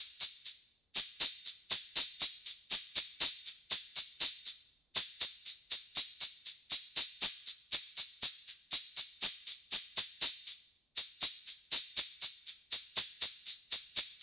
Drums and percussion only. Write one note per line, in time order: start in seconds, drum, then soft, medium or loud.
0.21 shaker medium
0.46 shaker soft
0.96 shaker medium
1.21 shaker medium
1.46 shaker soft
1.71 shaker medium
1.96 shaker medium
2.21 shaker medium
2.46 shaker soft
2.71 shaker medium
2.96 shaker medium
3.21 shaker medium
3.46 shaker soft
3.71 shaker medium
3.96 shaker medium
4.21 shaker medium
4.46 shaker soft
4.96 shaker medium
5.21 shaker medium
5.46 shaker soft
5.71 shaker medium
5.96 shaker medium
6.21 shaker medium
6.46 shaker soft
6.71 shaker medium
6.97 shaker medium
7.22 shaker medium
7.47 shaker soft
7.72 shaker medium
7.97 shaker medium
8.23 shaker medium
8.48 shaker soft
8.72 shaker medium
8.97 shaker medium
9.22 shaker medium
9.47 shaker soft
9.72 shaker medium
9.97 shaker medium
10.22 shaker medium
10.47 shaker soft
10.97 shaker medium
11.22 shaker medium
11.47 shaker soft
11.72 shaker medium
11.97 shaker medium
12.22 shaker medium
12.47 shaker soft
12.72 shaker medium
12.97 shaker medium
13.21 shaker medium
13.46 shaker soft
13.72 shaker medium
13.97 shaker medium